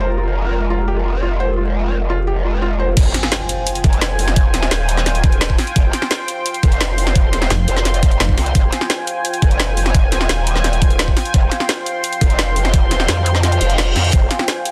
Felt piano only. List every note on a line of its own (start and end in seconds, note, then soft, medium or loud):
0.00 0.08 C5 loud
0.18 0.22 F4 medium
0.70 0.78 F4 loud
0.88 0.95 G4 loud
1.05 1.09 F4 medium
1.23 1.30 F4 loud
1.40 1.47 C5 loud
1.57 1.62 F4 medium
2.10 2.17 F4 loud
2.27 2.35 G4 loud
2.45 2.49 F4 medium
2.62 2.69 F4 loud
2.79 2.87 C5 loud